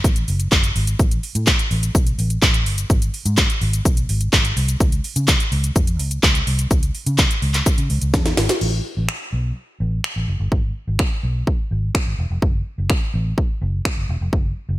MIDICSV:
0, 0, Header, 1, 3, 480
1, 0, Start_track
1, 0, Key_signature, 3, "minor"
1, 0, Tempo, 476190
1, 1002, Time_signature, 4, 2, 24, 8
1, 14907, End_track
2, 0, Start_track
2, 0, Title_t, "Fingered electric bass"
2, 0, Program_c, 0, 33
2, 44, Note_on_c, 0, 33, 94
2, 225, Note_off_c, 0, 33, 0
2, 282, Note_on_c, 0, 30, 90
2, 464, Note_off_c, 0, 30, 0
2, 522, Note_on_c, 0, 30, 91
2, 704, Note_off_c, 0, 30, 0
2, 762, Note_on_c, 0, 32, 94
2, 944, Note_off_c, 0, 32, 0
2, 1002, Note_on_c, 0, 33, 106
2, 1184, Note_off_c, 0, 33, 0
2, 1362, Note_on_c, 0, 45, 93
2, 1544, Note_off_c, 0, 45, 0
2, 1722, Note_on_c, 0, 33, 93
2, 1904, Note_off_c, 0, 33, 0
2, 2201, Note_on_c, 0, 33, 86
2, 2383, Note_off_c, 0, 33, 0
2, 2442, Note_on_c, 0, 33, 94
2, 2682, Note_off_c, 0, 33, 0
2, 2682, Note_on_c, 0, 31, 93
2, 2864, Note_off_c, 0, 31, 0
2, 2922, Note_on_c, 0, 32, 111
2, 3104, Note_off_c, 0, 32, 0
2, 3281, Note_on_c, 0, 44, 100
2, 3463, Note_off_c, 0, 44, 0
2, 3642, Note_on_c, 0, 32, 94
2, 3824, Note_off_c, 0, 32, 0
2, 3884, Note_on_c, 0, 35, 95
2, 4065, Note_off_c, 0, 35, 0
2, 4122, Note_on_c, 0, 32, 90
2, 4304, Note_off_c, 0, 32, 0
2, 4363, Note_on_c, 0, 32, 99
2, 4545, Note_off_c, 0, 32, 0
2, 4602, Note_on_c, 0, 36, 88
2, 4784, Note_off_c, 0, 36, 0
2, 5201, Note_on_c, 0, 49, 93
2, 5383, Note_off_c, 0, 49, 0
2, 5561, Note_on_c, 0, 37, 101
2, 5743, Note_off_c, 0, 37, 0
2, 5804, Note_on_c, 0, 41, 102
2, 6042, Note_off_c, 0, 41, 0
2, 6042, Note_on_c, 0, 37, 92
2, 6224, Note_off_c, 0, 37, 0
2, 6281, Note_on_c, 0, 37, 97
2, 6463, Note_off_c, 0, 37, 0
2, 6521, Note_on_c, 0, 36, 95
2, 6703, Note_off_c, 0, 36, 0
2, 6761, Note_on_c, 0, 37, 108
2, 6943, Note_off_c, 0, 37, 0
2, 7121, Note_on_c, 0, 49, 89
2, 7303, Note_off_c, 0, 49, 0
2, 7481, Note_on_c, 0, 37, 92
2, 7663, Note_off_c, 0, 37, 0
2, 7841, Note_on_c, 0, 49, 90
2, 7933, Note_off_c, 0, 49, 0
2, 7962, Note_on_c, 0, 37, 91
2, 8053, Note_off_c, 0, 37, 0
2, 8083, Note_on_c, 0, 37, 89
2, 8173, Note_off_c, 0, 37, 0
2, 8202, Note_on_c, 0, 40, 95
2, 8384, Note_off_c, 0, 40, 0
2, 8442, Note_on_c, 0, 32, 98
2, 8533, Note_off_c, 0, 32, 0
2, 8682, Note_on_c, 0, 33, 106
2, 8864, Note_off_c, 0, 33, 0
2, 9041, Note_on_c, 0, 33, 88
2, 9132, Note_off_c, 0, 33, 0
2, 9401, Note_on_c, 0, 35, 83
2, 9583, Note_off_c, 0, 35, 0
2, 9881, Note_on_c, 0, 33, 93
2, 10063, Note_off_c, 0, 33, 0
2, 10242, Note_on_c, 0, 33, 78
2, 10333, Note_off_c, 0, 33, 0
2, 10362, Note_on_c, 0, 30, 82
2, 10453, Note_off_c, 0, 30, 0
2, 10481, Note_on_c, 0, 31, 85
2, 10572, Note_off_c, 0, 31, 0
2, 10962, Note_on_c, 0, 32, 92
2, 11053, Note_off_c, 0, 32, 0
2, 11323, Note_on_c, 0, 35, 86
2, 11504, Note_off_c, 0, 35, 0
2, 11804, Note_on_c, 0, 32, 84
2, 11985, Note_off_c, 0, 32, 0
2, 12163, Note_on_c, 0, 32, 87
2, 12254, Note_off_c, 0, 32, 0
2, 12282, Note_on_c, 0, 28, 87
2, 12373, Note_off_c, 0, 28, 0
2, 12403, Note_on_c, 0, 29, 84
2, 12494, Note_off_c, 0, 29, 0
2, 12883, Note_on_c, 0, 30, 89
2, 12973, Note_off_c, 0, 30, 0
2, 13243, Note_on_c, 0, 33, 99
2, 13424, Note_off_c, 0, 33, 0
2, 13724, Note_on_c, 0, 30, 101
2, 13905, Note_off_c, 0, 30, 0
2, 14083, Note_on_c, 0, 30, 81
2, 14174, Note_off_c, 0, 30, 0
2, 14204, Note_on_c, 0, 28, 94
2, 14294, Note_off_c, 0, 28, 0
2, 14324, Note_on_c, 0, 29, 98
2, 14414, Note_off_c, 0, 29, 0
2, 14805, Note_on_c, 0, 30, 92
2, 14895, Note_off_c, 0, 30, 0
2, 14907, End_track
3, 0, Start_track
3, 0, Title_t, "Drums"
3, 44, Note_on_c, 9, 36, 111
3, 45, Note_on_c, 9, 82, 91
3, 144, Note_off_c, 9, 36, 0
3, 146, Note_off_c, 9, 82, 0
3, 161, Note_on_c, 9, 42, 53
3, 161, Note_on_c, 9, 82, 53
3, 261, Note_off_c, 9, 42, 0
3, 261, Note_off_c, 9, 82, 0
3, 282, Note_on_c, 9, 46, 75
3, 282, Note_on_c, 9, 82, 54
3, 383, Note_off_c, 9, 46, 0
3, 383, Note_off_c, 9, 82, 0
3, 399, Note_on_c, 9, 42, 69
3, 399, Note_on_c, 9, 82, 66
3, 500, Note_off_c, 9, 42, 0
3, 500, Note_off_c, 9, 82, 0
3, 521, Note_on_c, 9, 82, 59
3, 522, Note_on_c, 9, 36, 114
3, 523, Note_on_c, 9, 39, 124
3, 622, Note_off_c, 9, 82, 0
3, 623, Note_off_c, 9, 36, 0
3, 624, Note_off_c, 9, 39, 0
3, 641, Note_on_c, 9, 42, 51
3, 641, Note_on_c, 9, 82, 51
3, 742, Note_off_c, 9, 42, 0
3, 742, Note_off_c, 9, 82, 0
3, 763, Note_on_c, 9, 46, 80
3, 763, Note_on_c, 9, 82, 57
3, 864, Note_off_c, 9, 46, 0
3, 864, Note_off_c, 9, 82, 0
3, 881, Note_on_c, 9, 42, 83
3, 881, Note_on_c, 9, 82, 75
3, 981, Note_off_c, 9, 42, 0
3, 981, Note_off_c, 9, 82, 0
3, 1002, Note_on_c, 9, 36, 117
3, 1003, Note_on_c, 9, 82, 80
3, 1103, Note_off_c, 9, 36, 0
3, 1103, Note_off_c, 9, 82, 0
3, 1123, Note_on_c, 9, 42, 53
3, 1123, Note_on_c, 9, 82, 53
3, 1224, Note_off_c, 9, 42, 0
3, 1224, Note_off_c, 9, 82, 0
3, 1243, Note_on_c, 9, 46, 68
3, 1243, Note_on_c, 9, 82, 50
3, 1344, Note_off_c, 9, 46, 0
3, 1344, Note_off_c, 9, 82, 0
3, 1363, Note_on_c, 9, 42, 79
3, 1363, Note_on_c, 9, 82, 80
3, 1463, Note_off_c, 9, 42, 0
3, 1463, Note_off_c, 9, 82, 0
3, 1480, Note_on_c, 9, 39, 121
3, 1480, Note_on_c, 9, 82, 78
3, 1484, Note_on_c, 9, 36, 117
3, 1580, Note_off_c, 9, 39, 0
3, 1580, Note_off_c, 9, 82, 0
3, 1585, Note_off_c, 9, 36, 0
3, 1606, Note_on_c, 9, 42, 53
3, 1606, Note_on_c, 9, 82, 53
3, 1707, Note_off_c, 9, 42, 0
3, 1707, Note_off_c, 9, 82, 0
3, 1724, Note_on_c, 9, 46, 58
3, 1724, Note_on_c, 9, 82, 40
3, 1825, Note_off_c, 9, 46, 0
3, 1825, Note_off_c, 9, 82, 0
3, 1844, Note_on_c, 9, 42, 81
3, 1844, Note_on_c, 9, 82, 80
3, 1945, Note_off_c, 9, 42, 0
3, 1945, Note_off_c, 9, 82, 0
3, 1964, Note_on_c, 9, 36, 116
3, 1966, Note_on_c, 9, 82, 101
3, 2065, Note_off_c, 9, 36, 0
3, 2067, Note_off_c, 9, 82, 0
3, 2082, Note_on_c, 9, 42, 52
3, 2082, Note_on_c, 9, 82, 53
3, 2183, Note_off_c, 9, 42, 0
3, 2183, Note_off_c, 9, 82, 0
3, 2205, Note_on_c, 9, 46, 76
3, 2205, Note_on_c, 9, 82, 55
3, 2305, Note_off_c, 9, 46, 0
3, 2305, Note_off_c, 9, 82, 0
3, 2320, Note_on_c, 9, 42, 68
3, 2320, Note_on_c, 9, 82, 70
3, 2421, Note_off_c, 9, 42, 0
3, 2421, Note_off_c, 9, 82, 0
3, 2442, Note_on_c, 9, 36, 117
3, 2443, Note_on_c, 9, 82, 62
3, 2444, Note_on_c, 9, 39, 120
3, 2543, Note_off_c, 9, 36, 0
3, 2543, Note_off_c, 9, 82, 0
3, 2545, Note_off_c, 9, 39, 0
3, 2562, Note_on_c, 9, 42, 52
3, 2562, Note_on_c, 9, 82, 53
3, 2663, Note_off_c, 9, 42, 0
3, 2663, Note_off_c, 9, 82, 0
3, 2684, Note_on_c, 9, 46, 81
3, 2684, Note_on_c, 9, 82, 58
3, 2785, Note_off_c, 9, 46, 0
3, 2785, Note_off_c, 9, 82, 0
3, 2802, Note_on_c, 9, 42, 83
3, 2802, Note_on_c, 9, 82, 75
3, 2902, Note_off_c, 9, 42, 0
3, 2902, Note_off_c, 9, 82, 0
3, 2922, Note_on_c, 9, 36, 117
3, 2923, Note_on_c, 9, 82, 81
3, 3023, Note_off_c, 9, 36, 0
3, 3024, Note_off_c, 9, 82, 0
3, 3043, Note_on_c, 9, 42, 53
3, 3043, Note_on_c, 9, 82, 53
3, 3144, Note_off_c, 9, 42, 0
3, 3144, Note_off_c, 9, 82, 0
3, 3164, Note_on_c, 9, 46, 68
3, 3164, Note_on_c, 9, 82, 51
3, 3264, Note_off_c, 9, 46, 0
3, 3264, Note_off_c, 9, 82, 0
3, 3282, Note_on_c, 9, 42, 84
3, 3282, Note_on_c, 9, 82, 77
3, 3383, Note_off_c, 9, 42, 0
3, 3383, Note_off_c, 9, 82, 0
3, 3400, Note_on_c, 9, 39, 122
3, 3400, Note_on_c, 9, 82, 79
3, 3404, Note_on_c, 9, 36, 121
3, 3501, Note_off_c, 9, 39, 0
3, 3501, Note_off_c, 9, 82, 0
3, 3505, Note_off_c, 9, 36, 0
3, 3526, Note_on_c, 9, 42, 53
3, 3526, Note_on_c, 9, 82, 53
3, 3627, Note_off_c, 9, 42, 0
3, 3627, Note_off_c, 9, 82, 0
3, 3643, Note_on_c, 9, 46, 55
3, 3643, Note_on_c, 9, 82, 40
3, 3744, Note_off_c, 9, 46, 0
3, 3744, Note_off_c, 9, 82, 0
3, 3764, Note_on_c, 9, 42, 84
3, 3764, Note_on_c, 9, 82, 80
3, 3865, Note_off_c, 9, 42, 0
3, 3865, Note_off_c, 9, 82, 0
3, 3884, Note_on_c, 9, 36, 114
3, 3886, Note_on_c, 9, 82, 98
3, 3985, Note_off_c, 9, 36, 0
3, 3987, Note_off_c, 9, 82, 0
3, 4002, Note_on_c, 9, 42, 53
3, 4002, Note_on_c, 9, 82, 52
3, 4103, Note_off_c, 9, 42, 0
3, 4103, Note_off_c, 9, 82, 0
3, 4124, Note_on_c, 9, 46, 80
3, 4124, Note_on_c, 9, 82, 57
3, 4225, Note_off_c, 9, 46, 0
3, 4225, Note_off_c, 9, 82, 0
3, 4240, Note_on_c, 9, 42, 66
3, 4240, Note_on_c, 9, 82, 69
3, 4341, Note_off_c, 9, 42, 0
3, 4341, Note_off_c, 9, 82, 0
3, 4363, Note_on_c, 9, 36, 112
3, 4363, Note_on_c, 9, 82, 62
3, 4365, Note_on_c, 9, 39, 127
3, 4464, Note_off_c, 9, 36, 0
3, 4464, Note_off_c, 9, 82, 0
3, 4465, Note_off_c, 9, 39, 0
3, 4482, Note_on_c, 9, 42, 54
3, 4482, Note_on_c, 9, 82, 53
3, 4583, Note_off_c, 9, 42, 0
3, 4583, Note_off_c, 9, 82, 0
3, 4605, Note_on_c, 9, 46, 83
3, 4605, Note_on_c, 9, 82, 57
3, 4706, Note_off_c, 9, 46, 0
3, 4706, Note_off_c, 9, 82, 0
3, 4722, Note_on_c, 9, 42, 82
3, 4722, Note_on_c, 9, 82, 81
3, 4823, Note_off_c, 9, 42, 0
3, 4823, Note_off_c, 9, 82, 0
3, 4843, Note_on_c, 9, 36, 117
3, 4843, Note_on_c, 9, 82, 79
3, 4943, Note_off_c, 9, 36, 0
3, 4944, Note_off_c, 9, 82, 0
3, 4963, Note_on_c, 9, 42, 55
3, 4963, Note_on_c, 9, 82, 54
3, 5063, Note_off_c, 9, 42, 0
3, 5063, Note_off_c, 9, 82, 0
3, 5083, Note_on_c, 9, 46, 68
3, 5083, Note_on_c, 9, 82, 51
3, 5184, Note_off_c, 9, 46, 0
3, 5184, Note_off_c, 9, 82, 0
3, 5202, Note_on_c, 9, 42, 84
3, 5202, Note_on_c, 9, 82, 82
3, 5303, Note_off_c, 9, 42, 0
3, 5303, Note_off_c, 9, 82, 0
3, 5320, Note_on_c, 9, 39, 122
3, 5320, Note_on_c, 9, 82, 86
3, 5324, Note_on_c, 9, 36, 120
3, 5420, Note_off_c, 9, 39, 0
3, 5420, Note_off_c, 9, 82, 0
3, 5425, Note_off_c, 9, 36, 0
3, 5445, Note_on_c, 9, 42, 54
3, 5445, Note_on_c, 9, 82, 54
3, 5546, Note_off_c, 9, 42, 0
3, 5546, Note_off_c, 9, 82, 0
3, 5563, Note_on_c, 9, 46, 56
3, 5563, Note_on_c, 9, 82, 40
3, 5664, Note_off_c, 9, 46, 0
3, 5664, Note_off_c, 9, 82, 0
3, 5683, Note_on_c, 9, 42, 83
3, 5683, Note_on_c, 9, 82, 79
3, 5784, Note_off_c, 9, 42, 0
3, 5784, Note_off_c, 9, 82, 0
3, 5804, Note_on_c, 9, 36, 113
3, 5805, Note_on_c, 9, 82, 97
3, 5904, Note_off_c, 9, 36, 0
3, 5906, Note_off_c, 9, 82, 0
3, 5921, Note_on_c, 9, 42, 51
3, 5921, Note_on_c, 9, 82, 53
3, 6021, Note_off_c, 9, 42, 0
3, 6021, Note_off_c, 9, 82, 0
3, 6042, Note_on_c, 9, 46, 80
3, 6042, Note_on_c, 9, 82, 54
3, 6143, Note_off_c, 9, 46, 0
3, 6143, Note_off_c, 9, 82, 0
3, 6159, Note_on_c, 9, 42, 72
3, 6159, Note_on_c, 9, 82, 70
3, 6260, Note_off_c, 9, 42, 0
3, 6260, Note_off_c, 9, 82, 0
3, 6281, Note_on_c, 9, 82, 60
3, 6282, Note_on_c, 9, 36, 120
3, 6282, Note_on_c, 9, 39, 123
3, 6382, Note_off_c, 9, 36, 0
3, 6382, Note_off_c, 9, 82, 0
3, 6383, Note_off_c, 9, 39, 0
3, 6401, Note_on_c, 9, 42, 52
3, 6401, Note_on_c, 9, 82, 53
3, 6501, Note_off_c, 9, 42, 0
3, 6501, Note_off_c, 9, 82, 0
3, 6523, Note_on_c, 9, 46, 81
3, 6523, Note_on_c, 9, 82, 59
3, 6624, Note_off_c, 9, 46, 0
3, 6624, Note_off_c, 9, 82, 0
3, 6640, Note_on_c, 9, 42, 82
3, 6640, Note_on_c, 9, 82, 80
3, 6741, Note_off_c, 9, 42, 0
3, 6741, Note_off_c, 9, 82, 0
3, 6762, Note_on_c, 9, 36, 115
3, 6762, Note_on_c, 9, 82, 79
3, 6862, Note_off_c, 9, 36, 0
3, 6862, Note_off_c, 9, 82, 0
3, 6882, Note_on_c, 9, 42, 54
3, 6882, Note_on_c, 9, 82, 53
3, 6983, Note_off_c, 9, 42, 0
3, 6983, Note_off_c, 9, 82, 0
3, 7002, Note_on_c, 9, 46, 70
3, 7002, Note_on_c, 9, 82, 49
3, 7103, Note_off_c, 9, 46, 0
3, 7103, Note_off_c, 9, 82, 0
3, 7121, Note_on_c, 9, 42, 78
3, 7121, Note_on_c, 9, 82, 79
3, 7222, Note_off_c, 9, 42, 0
3, 7222, Note_off_c, 9, 82, 0
3, 7239, Note_on_c, 9, 39, 123
3, 7239, Note_on_c, 9, 82, 83
3, 7243, Note_on_c, 9, 36, 122
3, 7339, Note_off_c, 9, 39, 0
3, 7339, Note_off_c, 9, 82, 0
3, 7344, Note_off_c, 9, 36, 0
3, 7365, Note_on_c, 9, 42, 56
3, 7365, Note_on_c, 9, 82, 54
3, 7466, Note_off_c, 9, 42, 0
3, 7466, Note_off_c, 9, 82, 0
3, 7483, Note_on_c, 9, 46, 57
3, 7483, Note_on_c, 9, 82, 41
3, 7583, Note_off_c, 9, 46, 0
3, 7583, Note_off_c, 9, 82, 0
3, 7600, Note_on_c, 9, 39, 71
3, 7603, Note_on_c, 9, 42, 81
3, 7603, Note_on_c, 9, 82, 80
3, 7701, Note_off_c, 9, 39, 0
3, 7704, Note_off_c, 9, 42, 0
3, 7704, Note_off_c, 9, 82, 0
3, 7724, Note_on_c, 9, 36, 115
3, 7725, Note_on_c, 9, 82, 99
3, 7825, Note_off_c, 9, 36, 0
3, 7826, Note_off_c, 9, 82, 0
3, 7842, Note_on_c, 9, 42, 50
3, 7842, Note_on_c, 9, 82, 54
3, 7942, Note_off_c, 9, 42, 0
3, 7942, Note_off_c, 9, 82, 0
3, 7962, Note_on_c, 9, 46, 77
3, 7962, Note_on_c, 9, 82, 56
3, 8063, Note_off_c, 9, 46, 0
3, 8063, Note_off_c, 9, 82, 0
3, 8079, Note_on_c, 9, 42, 70
3, 8079, Note_on_c, 9, 82, 67
3, 8180, Note_off_c, 9, 42, 0
3, 8180, Note_off_c, 9, 82, 0
3, 8202, Note_on_c, 9, 36, 118
3, 8202, Note_on_c, 9, 38, 62
3, 8202, Note_on_c, 9, 82, 61
3, 8303, Note_off_c, 9, 36, 0
3, 8303, Note_off_c, 9, 38, 0
3, 8303, Note_off_c, 9, 82, 0
3, 8321, Note_on_c, 9, 42, 51
3, 8321, Note_on_c, 9, 82, 51
3, 8322, Note_on_c, 9, 38, 70
3, 8422, Note_off_c, 9, 42, 0
3, 8422, Note_off_c, 9, 82, 0
3, 8423, Note_off_c, 9, 38, 0
3, 8441, Note_on_c, 9, 38, 100
3, 8442, Note_on_c, 9, 46, 81
3, 8442, Note_on_c, 9, 82, 57
3, 8542, Note_off_c, 9, 38, 0
3, 8543, Note_off_c, 9, 46, 0
3, 8543, Note_off_c, 9, 82, 0
3, 8560, Note_on_c, 9, 42, 82
3, 8560, Note_on_c, 9, 82, 80
3, 8561, Note_on_c, 9, 38, 95
3, 8661, Note_off_c, 9, 42, 0
3, 8661, Note_off_c, 9, 82, 0
3, 8662, Note_off_c, 9, 38, 0
3, 8682, Note_on_c, 9, 49, 93
3, 8782, Note_off_c, 9, 49, 0
3, 9158, Note_on_c, 9, 26, 120
3, 9259, Note_off_c, 9, 26, 0
3, 10123, Note_on_c, 9, 26, 115
3, 10223, Note_off_c, 9, 26, 0
3, 10602, Note_on_c, 9, 36, 111
3, 10703, Note_off_c, 9, 36, 0
3, 11079, Note_on_c, 9, 26, 119
3, 11083, Note_on_c, 9, 36, 112
3, 11180, Note_off_c, 9, 26, 0
3, 11184, Note_off_c, 9, 36, 0
3, 11564, Note_on_c, 9, 36, 106
3, 11665, Note_off_c, 9, 36, 0
3, 12043, Note_on_c, 9, 36, 113
3, 12045, Note_on_c, 9, 26, 116
3, 12143, Note_off_c, 9, 36, 0
3, 12145, Note_off_c, 9, 26, 0
3, 12522, Note_on_c, 9, 36, 114
3, 12623, Note_off_c, 9, 36, 0
3, 12999, Note_on_c, 9, 26, 117
3, 13004, Note_on_c, 9, 36, 118
3, 13100, Note_off_c, 9, 26, 0
3, 13105, Note_off_c, 9, 36, 0
3, 13484, Note_on_c, 9, 36, 108
3, 13585, Note_off_c, 9, 36, 0
3, 13963, Note_on_c, 9, 36, 105
3, 13964, Note_on_c, 9, 26, 114
3, 14064, Note_off_c, 9, 36, 0
3, 14065, Note_off_c, 9, 26, 0
3, 14443, Note_on_c, 9, 36, 110
3, 14543, Note_off_c, 9, 36, 0
3, 14907, End_track
0, 0, End_of_file